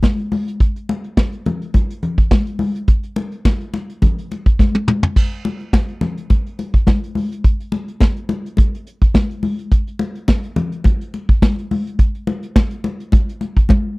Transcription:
0.03 kick, snare, high conga
0.19 closed hi-hat
0.32 open hi-hat, high conga
0.48 closed hi-hat
0.60 kick, closed hi-hat
0.76 closed hi-hat
0.89 closed hi-hat, muted conga
1.04 closed hi-hat
1.17 kick, snare, high conga
1.32 closed hi-hat
1.45 closed hi-hat, muted conga, low conga
1.62 closed hi-hat
1.74 kick, closed hi-hat, muted conga
1.90 closed hi-hat
2.02 closed hi-hat, low conga
2.18 kick, closed hi-hat
2.31 kick, snare, high conga
2.47 closed hi-hat
2.59 open hi-hat, high conga
2.75 closed hi-hat
2.87 kick, closed hi-hat
3.03 closed hi-hat
3.16 closed hi-hat, muted conga
3.32 closed hi-hat
3.45 kick, snare, high conga
3.60 closed hi-hat
3.73 snare, closed hi-hat, muted conga
3.90 closed hi-hat
4.02 kick, closed hi-hat, muted conga, low conga
4.18 closed hi-hat
4.31 closed hi-hat, muted conga
4.46 kick, closed hi-hat
4.59 kick, snare, high conga
4.75 high tom
4.88 mid tom, high conga
5.03 floor tom
5.16 kick, crash
5.32 closed hi-hat
5.45 closed hi-hat, muted conga
5.60 closed hi-hat
5.73 kick, snare, high conga
5.88 closed hi-hat
6.01 snare, closed hi-hat, muted conga, low conga
6.17 closed hi-hat
6.30 kick, closed hi-hat, muted conga
6.46 closed hi-hat
6.58 closed hi-hat, muted conga
6.74 kick, closed hi-hat
6.87 kick, snare, high conga
7.04 closed hi-hat
7.15 open hi-hat, high conga
7.32 closed hi-hat
7.44 kick, closed hi-hat
7.60 closed hi-hat
7.72 closed hi-hat, muted conga
7.88 closed hi-hat
8.00 kick, snare, high conga
8.16 closed hi-hat
8.29 closed hi-hat, muted conga
8.46 closed hi-hat
8.57 kick, closed hi-hat, muted conga
8.75 closed hi-hat
8.87 closed hi-hat
9.02 kick, closed hi-hat
9.14 kick, snare, high conga
9.30 closed hi-hat
9.43 open hi-hat, high conga
9.59 closed hi-hat
9.71 kick, closed hi-hat
9.87 closed hi-hat
9.99 closed hi-hat, muted conga
10.15 closed hi-hat
10.28 kick, snare, high conga
10.43 closed hi-hat
10.56 closed hi-hat, muted conga, low conga
10.72 closed hi-hat
10.84 kick, closed hi-hat, muted conga
11.01 closed hi-hat
11.14 closed hi-hat, muted conga
11.29 kick, closed hi-hat
11.42 kick, snare, high conga
11.59 closed hi-hat
11.71 open hi-hat, high conga
11.87 closed hi-hat
11.99 kick, closed hi-hat
12.15 closed hi-hat
12.27 closed hi-hat, muted conga
12.43 closed hi-hat
12.56 kick, snare, high conga
12.71 closed hi-hat
12.84 closed hi-hat, muted conga
13.00 closed hi-hat
13.12 kick, closed hi-hat, muted conga
13.29 closed hi-hat
13.41 closed hi-hat, muted conga
13.57 kick, closed hi-hat
13.69 kick, high tom, high conga

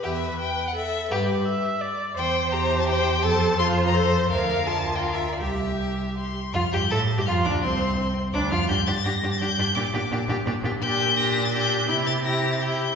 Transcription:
0.03 E2 G4 B4 E5
0.39 G5
0.67 F#5
0.75 A4 E5
1.10 G2 G4 B4
1.45 E5
1.81 D5
2.16 E2 C5 G5
2.52 G4 C5 A#5
2.79 A5
2.88 C5 G5
3.23 F2 A4 C5 A5
3.59 F4 C5 C6
3.87 A#5
3.94 A4 C5
4.30 D2 A#4 F5
4.66 F4 A5
4.95 G5
5.03 A#4 F5
5.14 E5
5.32 D5
5.40 C2 G4 E5
6.17 C6
6.54 F2 F4 F6
6.72 G2 G4 G6
6.91 A2 A4 A6
7.18 G2 G4 G6
7.26 F2 F4 F6
7.45 D2 D4 D6
7.63 C2 C4 C6
8.33 D2 D4 D6
8.51 F2 F4 F6
8.68 G2 D4 G4 G6
8.86 G2 D4 G4 A6
9.04 G2 D4 G4 A#6
9.22 G2 D4 G4
9.32 A6
9.39 G2 D4 G4 G6
9.58 G2 D4 G4
9.75 A#2 D4 G4 D6
9.93 A#2 D4 G4
10.11 A#2 D4 G4
10.28 A#2 D4 G4
10.46 A#2 D4 G4
10.63 A#2 D4 G4
10.81 A#2 D4 G4 G6
11.17 D4 G4 A#6
11.45 A6
11.53 D4 G4 G6
11.88 C3 E4 G4 G6
12.06 A6
12.24 E4 G4 A#6
12.52 A6
12.60 E4 G4 G6

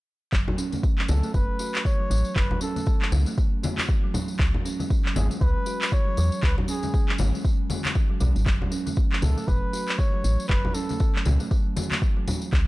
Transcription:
0.32 F#1 F#3, kick, clap, tambourine
0.48 low conga
0.58 C#4, tambourine
0.72 A3, tambourine, high conga
0.83 kick, tambourine
0.98 F#3, clap
1.08 C#2 A4, tambourine, high conga
1.23 A3, tambourine
1.34 F#1 B4, kick, tambourine
1.59 F#4, tambourine
1.75 clap, tambourine
1.85 E3 C#5, kick, tambourine
2.00 F#3
2.10 A1 F#3, tambourine
2.25 tambourine
2.36 F#1 F#3 B4, kick, clap, tambourine
2.51 low conga
2.61 C#4 A4, tambourine
2.76 A3, tambourine, high conga
2.86 kick, tambourine
3.02 F#3, clap
3.12 C#2, tambourine, high conga
3.26 A3, tambourine
3.38 kick, tambourine
3.63 F#4, tambourine, high conga
3.78 clap, tambourine, high conga
3.89 E3, kick, tambourine
4.04 F#3
4.14 F#3, tambourine, low conga
4.28 tambourine
4.39 C#2 F#3, kick, clap, tambourine
4.54 low conga
4.65 C#4, tambourine
4.80 G#3, tambourine, high conga
4.90 kick, tambourine
5.05 F#3, clap
5.16 G#1 G#4, tambourine, high conga
5.31 G#3, tambourine
5.41 C#2 B4, kick, tambourine
5.66 F#4, tambourine
5.82 clap, tambourine
5.92 E3 C#5, kick
6.07 F#3
6.17 E2 F#3, tambourine
6.32 tambourine
6.43 C#2 F#3 B4, kick, clap, tambourine
6.58 low conga
6.68 C#4 G#4, tambourine
6.83 G#3, tambourine, high conga
6.94 kick, tambourine
7.08 F#3, clap
7.18 G#1, tambourine, high conga
7.34 G#3, tambourine
7.45 kick, tambourine
7.70 F#4, tambourine, high conga
7.84 clap, tambourine, high conga
7.95 E3, kick, tambourine
8.10 F#3
8.20 B1 F#3, tambourine, low conga
8.36 G#1, tambourine
8.46 F#1 F#3, kick, clap, tambourine
8.62 low conga
8.71 C#4, tambourine
8.86 A3, tambourine, high conga
8.96 kick, tambourine
9.12 F#3, clap
9.22 C#2 A4, mid tom, tambourine, high conga
9.37 A3, tambourine
9.47 F#1 F#3 B4, kick, mid tom, tambourine
9.73 F#4, tambourine
9.88 clap, tambourine
9.98 E3 C#5, kick, tambourine
10.14 F#3
10.24 A1, tambourine
10.40 tambourine
10.48 F#1 F#3 B4, kick, clap, tambourine
10.65 low conga
10.74 C#4 A4, tambourine
10.89 A3, tambourine, high conga
11.00 kick, tambourine
11.15 F#3, clap
11.25 C#2, mid tom, tambourine, high conga
11.40 A3, tambourine
11.51 F#3, kick, tambourine
11.76 F#4, tambourine, high conga
11.91 clap, tambourine, high conga
12.02 E3, kick, tambourine
12.17 F#3
12.28 tambourine, low conga
12.42 tambourine
12.53 C#2 F#3, kick, clap, tambourine

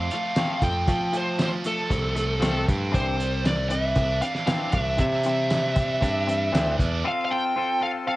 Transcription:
Already playing: F3 A3 C4 F5
0.11 F3 A3 F5, closed hi-hat
0.36 F3 A3 C4, snare, closed hi-hat, tambourine
0.62 F2 F3 A3 C4 G5, kick, closed hi-hat
0.88 F3 A3, kick, closed hi-hat
1.13 F3 A3, closed hi-hat
1.17 C5
1.39 F3 A3 C5, snare, closed hi-hat, tambourine
1.65 F3 A3 A4, closed hi-hat
1.90 C2 F3 A3 C4, kick, closed hi-hat
2.15 F3 A3, closed hi-hat
2.40 F3 A3 C4, snare, closed hi-hat, tambourine
2.66 G2 F3 A3 C4, kick, closed hi-hat
2.91 C2 C3 E3 C4 D4 C5, kick, closed hi-hat
3.17 E3 G3 C4, closed hi-hat
3.44 E3 C4 D5, snare, closed hi-hat, tambourine
3.69 E3 G3 C4 E5, closed hi-hat
3.95 C2 E3 C4 D4, kick, closed hi-hat
4.21 E3 G3 C4 F5, closed hi-hat
4.35 snare
4.47 E3 C4 D4 F5, snare, closed hi-hat, tambourine
4.72 C2 E3 C4 D4 E5, kick, closed hi-hat
4.97 C3 E3 C4 E5, kick, closed hi-hat
5.23 E3 G3 C4, closed hi-hat
5.50 E3 C4, snare, closed hi-hat, tambourine
5.76 E3 G3 C4, kick, closed hi-hat
6.01 G2 E3 C4 D4, kick, closed hi-hat
6.27 E3 G3 C4, closed hi-hat
6.52 D2 E3 C4 D4, snare, closed hi-hat, tambourine
6.78 E2 E3 C4 D4, kick, closed hi-hat
7.04 C4 F4 A4 C5 A5 C6
7.08 F5
7.25 F5
7.31 C4 F4 A4 G5
7.56 C4 F4 A4
7.81 C4 F4 A4 F5
8.07 C4 F4 A4 F5

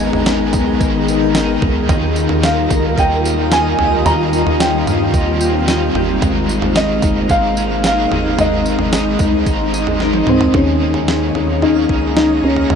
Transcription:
Already playing: G#1 G#2 D#3 G#3 B3 D#4 G#4 A#4 D#5 G5
0.00 B3, tambourine
0.13 G#1, floor tom
0.26 G#3 B3 D#4 D#5, snare, tambourine
0.30 D#4 A#4
0.53 B1 B3, kick, floor tom, tambourine
0.80 G#1 G#3 B3 D#4 A#4, kick, tambourine
0.85 A#4
1.08 D#4, tambourine
1.33 G#3 B3 A#4, snare, tambourine
1.37 D#4 A#4
1.62 C#2 D#4, kick, floor tom
1.88 D#2 D#3 G3 A#3 D#4 F4 A#4 D#5, kick, floor tom, tambourine
1.92 F4
2.16 D#4, tambourine
2.29 D#2, floor tom
2.42 G3 A#3 D#4 G4 F5, snare, tambourine
2.48 F4
2.70 C#2 D#4, kick, floor tom, tambourine
2.96 D#2 G3 A#3 D#5 G5, kick, tambourine
3.00 D#4 F4
3.25 G4, tambourine
3.50 G3 A#3 D#5 G#5, snare, tambourine
3.55 D#4 F4
3.79 C#2 G4, floor tom
4.05 D#2 D#3 G3 A#3 C4 D#4 D#5 A#5, floor tom, tambourine
4.09 F4
4.33 D#4, tambourine
4.46 D#2, floor tom
4.58 G3 A#3 G4 G5, snare, tambourine
4.63 D#4 F4
4.87 G2 D#4, floor tom, tambourine
5.12 D#2 G3 A#3 D#5, kick, tambourine
5.16 D#4 F4
5.41 G4, tambourine
5.66 G3 A#3 D#4 D#5, snare, tambourine
5.72 F4
5.94 G1 G4, floor tom
6.21 G#1 C3 G#3 A#3 C4 D#4 C5 F5, kick, floor tom, tambourine
6.25 A#4
6.48 D#4, tambourine
6.62 G#1, floor tom
6.74 G#3 C4 G#4 D#5, snare, tambourine
6.78 D#4 A#4
7.02 G1 D#4, kick, floor tom, tambourine
7.28 G#1 G#3 C4 C5 F5, kick, tambourine
7.32 D#4 A#4
7.57 G#4, tambourine
7.83 G#3 C4 C5 F5, snare, tambourine
7.87 D#4 A#4
8.11 G1 G#4, floor tom
8.37 G#1 G#3 C4 D#4 C5 D#5, floor tom, tambourine
8.41 A#4
8.65 D#4, tambourine
8.79 G#1, floor tom
8.90 G#3 C4 D#4 G#4 D#5, snare, tambourine
8.96 A#4
9.19 C2 D#4, kick, floor tom, tambourine
9.45 G#1 G#3 C4 C5, kick, tambourine
9.50 D#4 A#4
9.74 G#4, tambourine
9.87 floor tom
9.99 G#3 C4 A#4, snare
10.03 D#4 A#4
10.13 C5, high tom
10.27 C#2 C4 G#4, mid tom
10.41 floor tom
10.52 D#2 D#3 A#3 C#4 G#4 C#5 D#5 A#5, kick, floor tom
10.58 C#4 G#4
10.82 A#3
10.94 floor tom
11.08 G#4 F5, snare
11.35 D#2 C#4, floor tom
11.61 D#3 A#3 C#4 D#4, floor tom
11.66 G#4
11.89 C#2 G#4, kick
12.16 C#4 D#4, snare
12.43 C#2 A#3 C#4 G#4
12.48 A#3
12.56 floor tom
12.68 D#2 D#3 A#3 C#5, floor tom

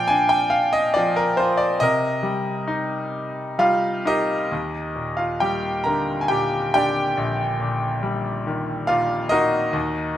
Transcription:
Already playing: A#2 F3 D5 F5 G5 G#5
0.08 D4 G#5
0.29 G5
0.50 F5
0.73 D#5
0.94 F3 D5
1.16 A#4
1.37 F4 C5
1.57 D5
1.80 C3 A#4 D#5
2.23 G3
2.68 D#4
3.59 G3 F4 F5
4.05 D#4 G4 A#4 D#5
4.52 D#2
4.96 A#2
5.17 F4 F5
5.40 G3 G4 G5
5.84 D3 A#4 A#5
6.21 G#5
6.28 A#2 G4 G5
6.74 D3 G4 D5 G5
7.17 A#1
7.60 A#2
8.03 G3
8.47 D#3
8.87 A#2 F4 F5
9.29 D#4 F#4 A#4 D#5
9.73 D#2

